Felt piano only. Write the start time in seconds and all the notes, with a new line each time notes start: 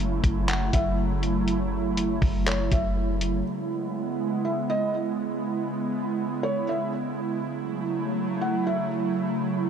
0.48 F#5
0.73 E5
2.47 C#5
2.73 E5
4.45 E5
4.70 D#5
6.43 C#5
6.69 E5
8.41 F#5
8.67 E5